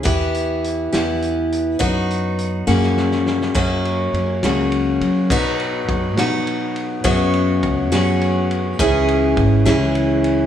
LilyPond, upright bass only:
\new Staff \with { instrumentName = "Upright bass" } { \clef bass \time 6/8 \key b \major \tempo 4. = 69 e,4. e,4. | fis,4. fis,4. | fis,4 fis,8 cis,4 fis8 | b,4 fis,8 b,4. |
fis,4 cis,8 fis,4. | cis,4 gis,,8 cis,4. | }